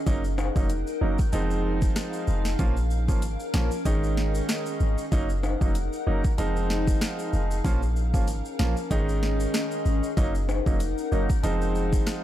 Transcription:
0.06 F#1 F#3 A#3 C#4 D#4 A#4 F#5, kick, closed hi-hat, shaker
0.24 shaker
0.38 high timbale, shaker
0.56 F1 F#3 A#3 C#4 D#4, kick, shaker
0.69 closed hi-hat, shaker
0.87 shaker
1.01 F#1 F#3 A#3 C#4 D#4
1.18 kick, shaker
1.33 F1 F3 G#3 C4 D#4 G#4 F5, closed hi-hat, shaker
1.50 shaker
1.82 kick, shaker
1.96 cross-stick, snare, closed hi-hat, shaker
2.13 shaker
2.27 F1, shaker
2.45 snare, shaker
2.59 A#1 F3 A#3 C#4 F4 A#4, kick, closed hi-hat, shaker
2.77 shaker
2.90 shaker
3.08 G#1 F3 A#3 C#4 F4, kick, shaker
3.22 closed hi-hat, shaker
3.40 shaker
3.54 A#1 F3 A#3 C#4 F4, snare
3.71 shaker
3.85 G#1 D#3 G#3 C#4 D#4 G#4 D#5, kick, closed hi-hat, shaker
4.04 shaker
4.17 snare
4.35 shaker
4.49 cross-stick, snare, closed hi-hat, shaker
4.66 shaker
4.80 G#1, shaker
4.98 shaker
5.12 F#1 F#3 A#3 C#4 D#4 A#4 F#5, kick, closed hi-hat, shaker
5.30 shaker
5.43 high timbale, shaker
5.61 F1 F#3 A#3 C#4 D#4, kick, shaker
5.75 closed hi-hat, shaker
5.93 shaker
6.06 F#1 F#3 A#3 C#4 D#4
6.24 kick, shaker
6.38 F1 F3 G#3 C4 D#4 G#4 F5, closed hi-hat, shaker
6.56 shaker
6.70 snare
6.87 kick, shaker
7.01 cross-stick, snare, closed hi-hat, shaker
7.19 shaker
7.33 F1, shaker
7.51 shaker
7.64 A#1 F3 A#3 C#4 F4 A#4 F5, kick, closed hi-hat, shaker
7.82 shaker
7.96 shaker
8.14 G#1 F3 A#3 C#4 F4, kick, shaker
8.28 closed hi-hat, shaker
8.45 shaker
8.59 A#1 F3 A#3 C#4 F4, snare
8.77 shaker
8.91 G#1 D#3 G#3 C#4 D#4 G#4 D#5, kick, closed hi-hat, shaker
9.09 shaker
9.23 snare
9.40 shaker
9.54 cross-stick, snare, closed hi-hat, shaker
9.71 shaker
9.86 G#1, shaker
10.03 shaker
10.17 F#1 F#3 A#3 C#4 D#4 A#4 F#5, kick, closed hi-hat, shaker
10.35 shaker
10.49 high timbale, shaker
10.66 F1 F#3 A#3 C#4 D#4, kick, shaker
10.80 closed hi-hat, shaker
10.98 shaker
11.12 F#1 F#3 A#3 C#4 D#4, shaker
11.30 kick, shaker
11.43 F1 F3 G#3 C4 D#4 G#4 F5, closed hi-hat, shaker
11.62 shaker
11.75 shaker
11.93 kick, shaker
12.07 cross-stick, snare, closed hi-hat, shaker

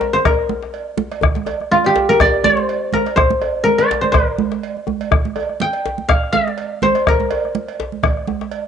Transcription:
Already playing: A#4 C5
0.01 djembe slap, djembe tone
0.13 C5, high conga
0.25 A#4, bombo rim, bombo low, cowbell, djembe slap, djembe bass, low conga
0.39 bombo rim
0.49 djembe slap, djembe tone, high conga
0.63 bombo rim, djembe slap
0.74 cowbell, djembe slap
0.97 djembe slap, djembe tone, high conga
1.11 bombo rim, cowbell, high conga
1.21 bombo rim, bombo low, high conga, djembe bass, low conga
1.35 djembe slap, high conga
1.46 bombo rim, cowbell, djembe tone, high conga
1.60 bombo rim, high conga
1.71 F4, bombo rim, high conga
1.84 G4, cowbell
1.96 djembe slap, djembe tone
2.09 A#4, high conga
2.20 D5, bombo rim, bombo low, cowbell, djembe slap, djembe bass, low conga
2.34 bombo rim
2.44 C5, djembe slap, djembe tone, high conga
2.57 bombo rim, djembe slap
2.69 cowbell, djembe slap
2.92 A#4, djembe slap, high conga, djembe tone
3.06 bombo rim, cowbell, high conga
3.16 C5, bombo rim, bombo low, djembe slap, low conga, djembe bass
3.30 bombo rim, djembe slap, high conga
3.42 cowbell, djembe tone
3.64 A#4, high conga
3.78 D5, cowbell
3.91 djembe slap, djembe tone
4.01 C5, djembe slap, high conga
4.12 A#4, bombo rim, bombo low, cowbell, djembe bass, low conga
4.28 high conga
4.38 djembe slap, high conga, djembe tone
4.52 bombo rim, djembe slap
4.63 cowbell
4.76 djembe slap, high conga
4.87 djembe slap, djembe tone, high conga
5.01 cowbell
5.11 bombo rim, bombo low, high conga, djembe bass, low conga
5.25 djembe slap, high conga
5.36 bombo rim, cowbell, high conga, djembe tone
5.49 bombo rim, high conga
5.60 G5, bombo rim, high conga
5.73 cowbell
5.86 djembe slap, djembe tone
5.98 djembe slap, high conga
6.08 F5, bombo rim, bombo low, cowbell, djembe slap, low conga, djembe bass
6.23 bombo rim
6.32 D5, djembe slap, high conga, djembe tone
6.47 bombo rim, djembe slap
6.57 cowbell, djembe slap
6.82 C5, djembe slap, high conga, djembe tone
6.95 bombo rim, cowbell, high conga
7.07 A#4, bombo rim, bombo low, high conga, low conga, djembe bass
7.20 djembe slap, high conga
7.31 bombo rim, cowbell, djembe tone
7.45 bombo rim, high conga
7.55 bombo rim, high conga
7.68 cowbell
7.80 djembe slap, djembe tone
7.92 djembe slap, high conga
8.03 bombo rim, bombo low, cowbell, djembe slap, low conga, djembe bass
8.17 bombo rim
8.28 djembe slap, high conga, djembe tone
8.41 bombo rim, djembe slap
8.52 cowbell, djembe slap

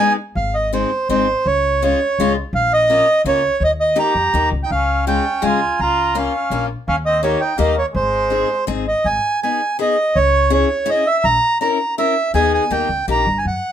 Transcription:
Already playing: G#3 D#4 G#5
0.00 B3 D#4
0.35 G#1 F5
0.54 D#5
0.73 G#3 C4 D#4 C5
1.09 G#1 G#3 C4 D#4 C5
1.46 C#2 C#5
1.82 G#3 C#4 F4 C#5
2.19 C#2 G#3 C#4 F4
2.53 A#1 F5
2.73 D#5
2.90 A#3 C#4 F4
3.25 C#2 A#3 C#4 F4 C#5
3.60 D#2 D#5
3.80 D#5
3.96 A#3 D#4 G4 A#5
4.15 F2
4.34 D#2 A#3 D#4 G4
4.52 C#2
4.63 D#4 G5
4.71 C#2 C#4 F5
5.07 G#3 C#4 F4 G5
5.42 C#2 G#3 C#4 F4 G#5
5.79 C#2 F4 A#5
6.15 A#3 C#4 F4 F5
6.50 A#1 A#3 C#4 F4
6.88 D#2 C#4 F5
7.06 C4 D#5
7.23 A#3 D#4 G4 C#5
7.40 D#4 G5
7.57 D#2 A#3 D#4 G4 D#5
7.75 A#3 C#5
7.92 G#1 G#3 C5
8.30 C4 D#4 G#4
8.67 G#1 C4 D#4 G#4
8.88 D#5
9.04 G#1 G#5
9.43 B3 D#4 G#4 G#5
9.79 B3 D#4 G#4 D#5
10.16 C#2 C#5
10.50 C#4 E4 G#4 C#5
10.86 C#4 E4 G#4
10.90 D#5
11.07 E5
11.24 A#1 A#5
11.61 C#4 E4 A#4 A#5
11.98 C#4 E4 A#4 E5
12.34 D#2 B3 D#4 G#4 G#5
12.54 G#5
12.70 D#2 A#3 D#4 G4 G5
12.89 C#2
13.08 A#1 A#3 D#4 G4 A#5
13.27 G1
13.38 G#5
13.45 F#2 F#5

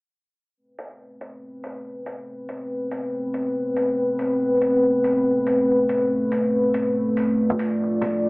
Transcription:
0.57 A3 C4 B4
0.79 closed hi-hat
1.21 closed hi-hat
1.64 closed hi-hat
2.06 closed hi-hat
2.49 closed hi-hat
2.91 closed hi-hat
3.34 closed hi-hat
3.77 closed hi-hat
4.19 closed hi-hat
4.62 closed hi-hat
5.04 closed hi-hat
5.47 closed hi-hat
5.89 closed hi-hat
6.32 closed hi-hat
6.74 closed hi-hat
7.17 closed hi-hat
7.38 F4 D5
7.50 low conga
7.59 closed hi-hat
8.01 closed hi-hat, high conga

